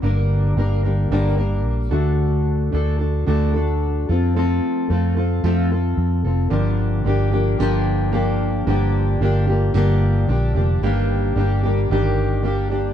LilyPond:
<<
  \new Staff \with { instrumentName = "Steel-string acoustic guitar" } { \time 4/4 \key g \minor \tempo 4 = 111 <g, d g bes d' bes'>4 <g bes d' bes'>8 <g bes d' bes'>8 <g, d g bes d' bes'>8 <g bes d' bes'>4 <d a d' fis' a'>8~ | <d a d' fis' a'>4 <a d' fis' a'>8 <d' fis' a'>8 <d a d' fis' a'>8 <d' fis' a'>4 <c' f' a'>8 | <f a c' f' a'>4 <a c' f' a'>8 <c' f' a'>8 <f a c' f' a'>8 <c' f' a'>4 <c' f' a'>8 | <g, d f bes d' g'>4 <f bes d' g'>8 <f bes d' g'>8 <g, d f bes d' g'>4 <f bes d' g'>4 |
<g, d f bes d' g'>4 <f bes d' g'>8 <f bes d' g'>8 <g, d f bes d' g'>4 <f bes d' g'>8 <f bes d' g'>8 | <g, ees g bes d' g'>4 <g bes d' g'>8 <g bes d' g'>8 <g, ees g bes d' g'>4 <g bes d' g'>8 <g bes d' g'>8 | }
  \new Staff \with { instrumentName = "Fingered electric bass" } { \clef bass \time 4/4 \key g \minor g,,4 g,,4 g,,4 bes,,8 d,8~ | d,4 d,4 d,4. f,8~ | f,8 r8 f,4 f,4 f,8 f,,8 | g,,4 g,,4 g,,2 |
g,,4 g,,4 g,,4 bes,,8 f,,8 | g,,4 g,,4 g,,2 | }
>>